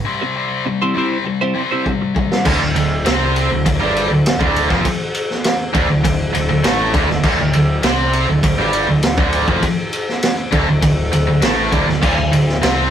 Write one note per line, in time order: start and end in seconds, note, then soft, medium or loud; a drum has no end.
0.05 0.34 C3 medium
0.05 0.35 G3 medium
0.05 0.35 C4 medium
0.21 muted clean electric guitar stroke medium
0.35 0.64 C3 medium
0.35 0.64 G3 medium
0.35 0.65 C4 medium
0.65 0.93 C3 medium
0.65 0.93 G3 medium
0.65 muted clean electric guitar stroke soft
0.82 0.96 C4 medium
0.82 0.96 E4 medium
0.82 0.97 G4 medium
0.82 0.97 C5 medium
0.94 1.23 C3 medium
0.94 1.24 G3 medium
0.94 1.25 C4 medium
0.94 1.16 C4 medium
0.94 1.17 E4 medium
0.94 1.17 G4 loud
0.94 1.17 C5 medium
1.25 1.53 C3 medium
1.25 1.53 G3 medium
1.25 muted clean electric guitar stroke soft
1.41 1.61 C4 medium
1.41 1.61 E4 medium
1.41 1.61 G4 medium
1.41 1.61 C5 medium
1.54 1.84 C3 medium
1.54 1.84 G3 loud
1.54 1.84 C4 loud
1.71 1.92 C4 medium
1.71 1.91 E4 medium
1.71 1.91 G4 medium
1.71 1.91 C5 medium
1.85 2.13 C3 medium
1.85 2.13 G3 medium
1.85 kick medium
2.02 muted clean electric guitar stroke soft
2.15 2.42 C3 medium
2.15 2.43 G3 medium
2.15 kick medium
2.32 snare medium
2.45 2.60 D1 medium
2.45 2.59 D2 medium
2.45 2.60 D3 loud
2.45 kick loud
2.45 crash loud
2.60 2.75 D1 medium
2.60 2.74 D2 medium
2.76 3.04 D1 medium
2.76 3.00 D2 medium
2.76 ride medium
3.05 3.48 C2 medium
3.05 3.49 C3 medium
3.05 3.50 C4 loud
3.05 snare loud
3.05 ride medium
3.36 ride medium
3.50 3.65 D1 medium
3.50 3.64 D2 medium
3.65 3.80 D1 medium
3.65 3.79 D2 medium
3.65 kick loud
3.65 ride loud
3.79 4.09 G1 medium
3.79 4.09 G2 medium
3.79 4.09 G3 loud
3.96 ride medium
4.10 4.38 D1 medium
4.10 4.34 D2 medium
4.26 snare loud
4.26 ride loud
4.39 4.68 D1 medium
4.39 4.68 D2 medium
4.39 4.69 D3 loud
4.39 kick loud
4.56 ride medium
4.69 4.84 F1 loud
4.69 4.83 F2 medium
4.69 4.84 F3 medium
4.69 kick loud
4.69 snare soft
4.85 kick loud
4.85 ride loud
5.15 ride medium
5.30 snare soft
5.44 snare loud
5.44 ride medium
5.73 5.88 D1 medium
5.73 5.87 D2 medium
5.73 5.88 D3 loud
5.73 kick loud
5.73 ride medium
5.88 6.04 D1 medium
5.88 6.02 D2 medium
6.04 6.32 D1 medium
6.04 6.28 D2 medium
6.04 kick medium
6.04 ride loud
6.34 6.48 D1 medium
6.34 6.48 D2 medium
6.34 ride medium
6.49 6.63 D1 medium
6.49 6.63 D2 medium
6.64 6.92 A1 medium
6.64 6.93 A2 medium
6.64 6.93 A3 loud
6.64 snare loud
6.64 ride loud
6.93 7.08 D1 medium
6.93 7.07 D2 medium
6.93 7.08 D3 loud
6.93 kick loud
6.93 ride medium
7.08 7.23 D1 medium
7.08 7.22 D2 medium
7.08 snare soft
7.23 7.37 D1 medium
7.23 7.37 D2 medium
7.23 7.38 D3 loud
7.23 kick loud
7.23 crash loud
7.38 7.53 D1 medium
7.38 7.52 D2 medium
7.53 7.82 D1 medium
7.53 7.77 D2 medium
7.53 ride medium
7.83 8.25 C2 medium
7.83 8.27 C3 medium
7.83 8.27 C4 loud
7.83 snare loud
7.83 ride medium
8.13 ride medium
8.28 8.42 D1 medium
8.28 8.43 D2 medium
8.43 8.57 D1 medium
8.43 8.58 D2 medium
8.43 kick loud
8.43 ride loud
8.58 8.86 G1 medium
8.58 8.87 G2 medium
8.58 8.88 G3 medium
8.73 ride medium
8.88 9.16 D1 medium
8.88 9.12 D2 medium
9.03 snare loud
9.03 ride loud
9.18 9.45 D1 medium
9.18 9.47 D2 medium
9.18 9.47 D3 medium
9.18 kick loud
9.33 ride medium
9.48 9.62 F1 medium
9.48 9.62 F2 medium
9.48 9.62 F3 loud
9.48 kick loud
9.63 kick loud
9.63 ride medium
9.93 ride medium
10.09 snare soft
10.23 snare loud
10.23 ride loud
10.51 10.66 D1 loud
10.51 10.66 D2 medium
10.51 10.66 D3 loud
10.51 kick loud
10.51 ride medium
10.67 10.82 D1 medium
10.67 10.81 D2 medium
10.82 11.10 D1 medium
10.82 11.06 D2 medium
10.82 kick loud
10.82 ride loud
11.12 11.26 D1 medium
11.12 11.25 D2 medium
11.12 ride medium
11.27 11.41 D1 medium
11.27 11.41 D2 medium
11.41 11.70 A1 medium
11.41 11.71 A2 medium
11.41 11.71 A3 medium
11.41 snare loud
11.41 ride loud
11.72 11.86 D1 medium
11.72 11.86 D2 medium
11.72 11.86 D3 loud
11.72 kick loud
11.72 ride medium
11.87 12.01 D1 medium
11.87 12.00 D2 medium
11.87 snare soft
12.01 12.16 D1 medium
12.01 12.15 D2 loud
12.01 12.16 D3 loud
12.01 kick loud
12.01 crash loud
12.17 12.31 D1 medium
12.17 12.31 D2 medium
12.32 12.60 D1 medium
12.32 12.56 D2 medium
12.32 ride medium
12.49 snare soft
12.62 12.90 C2 medium
12.62 12.90 C3 medium
12.62 12.90 C4 loud
12.62 snare loud
12.62 ride loud